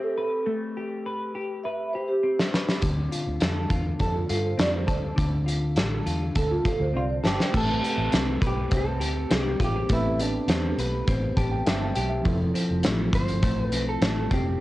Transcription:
Already playing: clean electric guitar A3 C4 G4 B4
0.03 vibraphone A4
0.18 clean electric guitar B4
0.46 clean electric guitar A3
0.77 clean electric guitar G4
1.06 clean electric guitar B4
1.35 clean electric guitar G4
1.64 clean electric guitar B4, vibraphone E5
1.93 clean electric guitar G4, vibraphone C5
2.08 vibraphone G4
2.23 clean electric guitar C4
2.39 snare
2.54 clean electric guitar B4, snare
2.69 snare
2.82 fingered electric bass D2, clean electric guitar D3, kick, closed hi-hat
3.11 clean electric guitar F4, closed hi-hat
3.27 fingered electric bass D2
3.40 fingered electric bass F2, clean electric guitar A4, snare, closed hi-hat
3.70 fingered electric bass E2, clean electric guitar F4, kick, closed hi-hat
3.99 fingered electric bass F2, vibraphone A4, clean electric guitar A4, kick, closed hi-hat
4.15 vibraphone F4
4.29 fingered electric bass G2, clean electric guitar F4, vibraphone A4, closed hi-hat
4.45 vibraphone C5
4.58 fingered electric bass F2, clean electric guitar C4, vibraphone D5, snare, closed hi-hat
4.73 vibraphone C5
4.87 fingered electric bass D2, clean electric guitar A4, kick, closed hi-hat
5.16 fingered electric bass D2, clean electric guitar D3, kick, closed hi-hat
5.46 clean electric guitar F4, closed hi-hat
5.76 fingered electric bass A1, clean electric guitar A4, snare, closed hi-hat
6.06 fingered electric bass E2, clean electric guitar F4, closed hi-hat
6.35 fingered electric bass D2, clean electric guitar A4, vibraphone A4, kick, closed hi-hat
6.50 vibraphone F4
6.65 clean electric guitar F4, vibraphone A4, muted fingered electric bass stroke, kick, closed hi-hat
6.80 fingered electric bass D2, vibraphone C5
6.94 fingered electric bass C2, clean electric guitar C4 F4, vibraphone D5
7.09 vibraphone C5
7.24 fingered electric bass G1, clean electric guitar G4 A4, snare
7.40 snare
7.52 fingered electric bass A1, tine electric piano A3 C4 G4, clean electric guitar A3, kick, crash
7.56 clean electric guitar A4, tine electric piano B4
7.83 clean electric guitar G4, closed hi-hat
7.98 fingered electric bass A1
8.12 fingered electric bass C2, clean electric guitar C4, snare, closed hi-hat
8.42 fingered electric bass B1, clean electric guitar B4, kick, closed hi-hat
8.47 clean electric guitar G4
8.71 fingered electric bass C2, clean electric guitar C4, kick, closed hi-hat
8.77 clean electric guitar A4
9.00 fingered electric bass D2, clean electric guitar G4, closed hi-hat
9.30 fingered electric bass C2, clean electric guitar C4, snare, closed hi-hat
9.40 clean electric guitar G4
9.60 fingered electric bass A1, clean electric guitar F4, kick, closed hi-hat
9.64 clean electric guitar G4
9.76 clean electric guitar G4
9.87 fingered electric bass A1, tine electric piano A3 B3 G4, clean electric guitar A3, kick, closed hi-hat
9.92 tine electric piano C4 B4, clean electric guitar E4
10.19 clean electric guitar D4 G4, closed hi-hat
10.48 fingered electric bass E2, clean electric guitar C4, snare, closed hi-hat
10.78 fingered electric bass B1, clean electric guitar B4, closed hi-hat
11.07 fingered electric bass A1, clean electric guitar C4, kick, closed hi-hat
11.37 fingered electric bass A1, clean electric guitar G4, tine electric piano A5, kick, closed hi-hat
11.52 tine electric piano G5
11.66 fingered electric bass G1, clean electric guitar C4, tine electric piano E5, snare, closed hi-hat
11.81 tine electric piano A5
11.95 fingered electric bass B1, clean electric guitar G4, tine electric piano G5, closed hi-hat
12.09 tine electric piano E5
12.22 tine electric piano F3 C4 E4, kick, closed hi-hat
12.26 fingered electric bass F1, clean electric guitar F3, tine electric piano A4
12.54 clean electric guitar C4, closed hi-hat
12.70 fingered electric bass F1
12.83 fingered electric bass A1, clean electric guitar A3, snare, closed hi-hat
13.13 fingered electric bass G1, clean electric guitar C5, kick, closed hi-hat
13.28 closed hi-hat
13.43 fingered electric bass A1, clean electric guitar A3, kick, closed hi-hat
13.63 clean electric guitar B4
13.72 fingered electric bass B1, clean electric guitar C4, closed hi-hat
13.89 clean electric guitar A4
14.01 fingered electric bass A1, clean electric guitar A3, snare, closed hi-hat
14.31 fingered electric bass F1, clean electric guitar C4 G4, kick, closed hi-hat

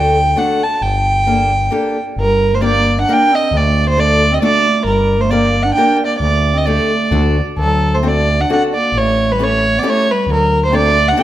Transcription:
Already playing: fm bass D2, steel-string acoustic guitar A3 D4 F#4 A4, violin G5
0.36 steel-string acoustic guitar A3 D4 F#4 A4, violin F#5
0.63 violin A5
0.82 fm bass G1, violin G5
1.27 steel-string acoustic guitar A#3 D4 G4 A4
1.71 steel-string acoustic guitar A#3 D4 G4 A4
2.17 fm bass G1, clarinet G3
2.21 violin A#4
2.53 clarinet A3, violin C5
2.62 steel-string acoustic guitar A#3 D4 G4 A#4, clarinet A#3, violin D5
2.99 clarinet D4, violin F#5
3.09 steel-string acoustic guitar A#3 D4 G4 A#4, clarinet D4
3.13 violin G5
3.32 clarinet C4, violin D#5
3.51 fm bass D2, clarinet A3
3.57 violin D5
3.88 clarinet A3, violin C5
3.97 steel-string acoustic guitar A3 D4 F#4 A4, clarinet A3, violin D5
4.31 clarinet C4, violin D#5
4.41 clarinet A3, steel-string acoustic guitar A3 D4 F#4 A4, violin D5
4.85 fm bass G1, clarinet G3, violin A#4
5.18 clarinet A3, violin C5
5.29 clarinet A#3, steel-string acoustic guitar A#3 D4 G4 A#4, violin D5
5.63 clarinet D4, violin F#5
5.75 steel-string acoustic guitar A#3 D4 G4 A#4, clarinet D4, violin G5
6.04 clarinet A#3, violin D5
6.18 fm bass D2, clarinet A3, violin D5
6.53 clarinet C4
6.58 violin D#5
6.66 steel-string acoustic guitar A3 D4 G4 A4, clarinet A3, violin D5
7.11 fm bass D2, steel-string acoustic guitar A3 D4 F#4 A4
7.57 fm bass D2, violin A4
7.61 clarinet F#3
7.94 clarinet A3, violin C5
8.03 steel-string acoustic guitar C4 D4 F#4 A4
8.08 clarinet A3, violin D5
8.40 clarinet D4, violin F#5
8.50 steel-string acoustic guitar C4 D4 F#4 A4, clarinet D4, violin F#5
8.75 clarinet A#3, violin D5
8.92 fm bass A1
8.98 clarinet A3, violin C#5
9.32 clarinet G3, violin B4
9.39 clarinet A3, steel-string acoustic guitar C#4 E4 G4 A4
9.44 violin C#5
9.78 clarinet B3, violin D5
9.83 steel-string acoustic guitar C#4 E4 G4 A4
9.88 clarinet A3, violin C#5
10.11 clarinet G3, violin B4
10.27 fm bass D2, clarinet F#3
10.34 violin A#4
10.65 clarinet A3, violin C5
10.72 steel-string acoustic guitar C4 D4 F#4 A4, violin D5
10.77 clarinet A3
11.08 clarinet D4, violin F#5
11.17 steel-string acoustic guitar C4 D4 F#4 A4

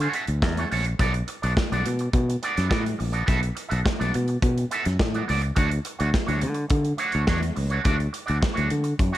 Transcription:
0.00 clean electric guitar C#4 F#4 A4 C#5, closed hi-hat
0.14 clean electric guitar C#4 F#4 A4 E5, closed hi-hat
0.27 fingered electric bass D2, muted clean electric guitar stroke, closed hi-hat
0.42 fingered electric bass E2, muted clean electric guitar stroke, kick, snare
0.57 clean electric guitar C#4 F#4 A4 C#5, closed hi-hat
0.71 fingered electric bass A#1, clean electric guitar C#4 F#4 A4 C#5, open hi-hat
0.84 muted clean electric guitar stroke, closed hi-hat
0.99 fingered electric bass B1, clean electric guitar B3 F#4 A4 D5, kick, closed hi-hat
1.14 muted clean electric guitar stroke, closed hi-hat
1.28 muted clean electric guitar stroke, closed hi-hat
1.42 fingered electric bass B1, clean electric guitar B3 F#4 A4 D5, closed hi-hat
1.57 muted clean electric guitar stroke, kick, snare
1.72 fingered electric bass B1, clean electric guitar B3 F#4 A4 D5, closed hi-hat
1.86 fingered electric bass B2, closed hi-hat
1.99 muted clean electric guitar stroke, closed hi-hat
2.13 fingered electric bass B2, muted clean electric guitar stroke, kick, closed hi-hat
2.29 muted clean electric guitar stroke, closed hi-hat
2.43 clean electric guitar B3 F#4 A4 D5, closed hi-hat
2.56 fingered electric bass F#2, clean electric guitar B3 F#4 A4 D5, snare, closed hi-hat
2.69 fingered electric bass A2, clean electric guitar B3 F#4 A4 D5, kick, snare
2.84 muted clean electric guitar stroke, closed hi-hat
2.99 fingered electric bass A#1, muted clean electric guitar stroke, open hi-hat
3.12 clean electric guitar B3 F#4 A4 D5, closed hi-hat
3.26 fingered electric bass B1, clean electric guitar B3 F#4 A4 E5, kick, closed hi-hat
3.40 muted clean electric guitar stroke, closed hi-hat
3.55 muted clean electric guitar stroke, closed hi-hat
3.69 fingered electric bass B1, clean electric guitar B3 F#4 A4 E5, closed hi-hat
3.84 muted clean electric guitar stroke, kick, snare
3.99 fingered electric bass B1, clean electric guitar B3 F#4 A4 D5, closed hi-hat
4.14 fingered electric bass B2, muted clean electric guitar stroke, closed hi-hat
4.28 muted clean electric guitar stroke, closed hi-hat
4.42 fingered electric bass B2, kick, closed hi-hat
4.58 muted clean electric guitar stroke, closed hi-hat
4.71 clean electric guitar B3 F#4 A4 E5, closed hi-hat
4.85 fingered electric bass F#2, muted clean electric guitar stroke, snare, closed hi-hat
4.99 fingered electric bass A2, muted clean electric guitar stroke, kick, snare
5.14 clean electric guitar B3 F#4 A4 D5, closed hi-hat
5.28 fingered electric bass C#2, clean electric guitar B3 F#4 A4 D5, open hi-hat
5.42 muted clean electric guitar stroke, closed hi-hat
5.56 fingered electric bass D2, clean electric guitar A3 D4 F#4 C#5, kick, closed hi-hat
5.71 muted clean electric guitar stroke, closed hi-hat
5.85 muted clean electric guitar stroke, closed hi-hat
5.99 fingered electric bass D2, clean electric guitar A3 D4 F#4 C#5, closed hi-hat
6.14 muted clean electric guitar stroke, kick, snare
6.27 fingered electric bass D2, clean electric guitar A3 D4 F#4 C#5, closed hi-hat
6.41 fingered electric bass D3, muted clean electric guitar stroke, closed hi-hat
6.54 muted clean electric guitar stroke, closed hi-hat
6.68 fingered electric bass D3, muted clean electric guitar stroke, kick, closed hi-hat
6.83 muted clean electric guitar stroke, closed hi-hat
6.97 clean electric guitar A3 D4 F#4 C#5, closed hi-hat
7.12 fingered electric bass D2, clean electric guitar A3 D4 F#4 C#5, closed hi-hat
7.27 fingered electric bass E2, clean electric guitar A3 D4 F#4 C#5, kick, snare
7.41 muted clean electric guitar stroke, closed hi-hat
7.56 fingered electric bass C#2, muted clean electric guitar stroke, open hi-hat
7.70 clean electric guitar A3 D4 F#4 C#5, closed hi-hat
7.84 fingered electric bass D2, clean electric guitar A3 D4 F#4 D5, kick, closed hi-hat
7.98 muted clean electric guitar stroke, closed hi-hat
8.13 muted clean electric guitar stroke, closed hi-hat
8.26 fingered electric bass D2, clean electric guitar A3 D4 F#4 D5, closed hi-hat
8.40 muted clean electric guitar stroke, kick, snare
8.54 clean electric guitar A3 D4 F#4 C#5, closed hi-hat
8.58 fingered electric bass D2
8.69 fingered electric bass D3, muted clean electric guitar stroke, closed hi-hat
8.84 muted clean electric guitar stroke, closed hi-hat
8.99 fingered electric bass F#2, muted clean electric guitar stroke, kick, closed hi-hat
9.12 clean electric guitar A3 D4 F#4 C#5, closed hi-hat

